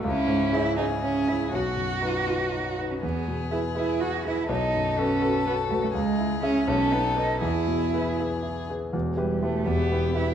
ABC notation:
X:1
M:6/8
L:1/16
Q:3/8=81
K:E
V:1 name="Violin"
E6 G6 | F8- F2 z2 | G12 | A12 |
G6 A6 | G8- G2 z2 | [K:Em] z6 G6 |]
V:2 name="Grand piano"
C,,2 G,,2 [CEG]2 [CEG]2 C2 [CEG]2 | B,,,2 F,,2 [DFB]2 [DFB]2 D2 [DFB]2 | E,,2 B,,2 [EGB]2 [EGB]2 E2 [EGB]2 | B,,,2 F,,2 [FAB]2 [FAB]2 F2 [FAB]2 |
C,,2 E2 [Ge]2 B,,,2 D2 [AB]2 | E,,2 B,,2 [EGB]2 [EGB]2 E2 [EGB]2 | [K:Em] [E,,,E,,]2 [EGB]2 [EGB]2 [E,,,E,,]2 [EGB]2 [EGB]2 |]
V:3 name="Cello"
C4 E2 D2 C2 E2 | F8- F2 z C | B,4 E2 E2 F2 E2 | D4 C4 B,2 A, A, |
G,4 C2 C2 B,2 D2 | E6 z6 | [K:Em] z2 G,2 A,2 B,4 E2 |]